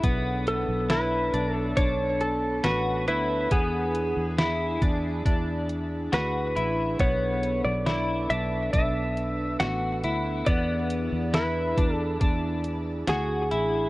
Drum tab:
HH |xxxxxxxx|xxxxxxxx|xxxxxxxx|xxxxxxxx|
SD |--o---o-|--o---o-|--o---o-|--o---o-|
BD |o---o---|o--oo---|o---o---|o--oo---|